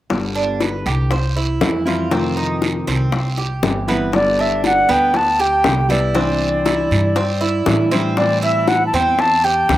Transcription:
0.10 G1 D3 G3 B3 G4, high bongo, long guiro
0.35 D4
0.60 B4, high bongo, short guiro
0.86 C2 G4, short guiro
1.11 C5, muted nylon-string guitar stroke, high bongo, long guiro
1.37 E4
1.61 F2 E3 G3 C4 E4, high bongo, low bongo, short guiro
1.85 E3 G3 C4 E4 F4, short guiro
2.11 C3 D#3 A3 C4 F4, high bongo, long guiro
2.37 D#4
2.62 high bongo, short guiro
2.87 C2 C4, high bongo, short guiro
3.12 muted nylon-string guitar stroke, high bongo, long guiro
3.38 G4, high bongo
3.63 G1 E3 G3 C4 E4, high bongo, low bongo, short guiro
3.88 E3 G3 B3 C4 E4, high bongo, short guiro
4.12 D3 G3 B3 G4 D5, high bongo, long guiro
4.39 D4 E5
4.64 F#5, high bongo, short guiro
4.89 D2 B3 G5, short guiro
5.14 A5, muted nylon-string guitar stroke, high bongo, long guiro
5.40 G4 G5
5.64 C2 D3 G3 B3 G4, high bongo, low bongo, short guiro
5.89 G3 B3 E4 G4 D5, short guiro
6.14 C3 E3 G3 C4 D4 E4, high bongo, long guiro
6.65 E4, high bongo, short guiro
6.91 G2, high bongo, short guiro
7.16 C4, muted nylon-string guitar stroke, high bongo, long guiro
7.41 E4, high bongo
7.66 A2 E3 G3 D4 E4, high bongo, low bongo, short guiro
7.91 E3 G3 C4 D4 E4, high bongo, short guiro
8.17 E3 G3 C4 E4 D5, high bongo, long guiro
8.43 E4 E5
8.68 F#5, high bongo, short guiro
8.86 A5
8.93 E2 C4 G5, short guiro
9.18 A5, muted nylon-string guitar stroke, high bongo, long guiro
9.44 G4 G5
9.69 D2 E3 G3 C4 E4, high bongo, low bongo, short guiro

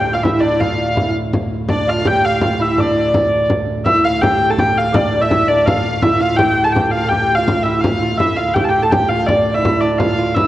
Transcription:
Already playing: D2 A2 G4 G5
0.07 frame drum
0.13 F4 F5
0.23 E4 E5, frame drum
0.40 D4 D5
0.60 F4 F5, frame drum
0.96 E4, frame drum
1.15 frame drum
1.33 frame drum
1.69 D4 D5, frame drum
1.88 F4 F5
2.05 G4 G5, frame drum
2.25 F5
2.41 F4 F5, frame drum
2.60 E4 E5
2.78 D4 D5, frame drum
3.14 frame drum
3.50 frame drum
3.85 D2 A2 E4 E5, frame drum
4.04 F5
4.21 G4 G5, frame drum
4.41 frame drum
4.50 A4 A5
4.58 G4 G5, frame drum
4.77 F5
4.94 D4 D5, frame drum
5.21 E4 E5
5.31 frame drum
5.48 D4 D5, frame drum
5.66 F4 F5, frame drum
6.02 E4 E5, frame drum
6.20 F4 F5
6.37 G4 G5, frame drum
6.58 frame drum
6.64 A4 A5
6.72 G4 G5, frame drum
6.91 F4 F5
7.04 A4
7.08 G4 G5, frame drum
7.30 frame drum
7.35 F4 F5
7.48 frame drum
7.63 E4 E5
7.81 F4 F5, frame drum
8.02 F4
8.18 D2 A2 E4 E5, frame drum
8.36 F4 F5
8.54 G4 G5, frame drum
8.64 A5
8.69 G4 G5
8.74 frame drum
8.82 A4 A5
8.91 G4 G5, frame drum
9.08 F4 F5
9.26 D4 D5, frame drum
9.54 E4 E5
9.62 E4, frame drum
9.68 E4
9.81 D4 D5
9.98 F4 F5, frame drum
10.19 F4
10.34 E4 E5, frame drum

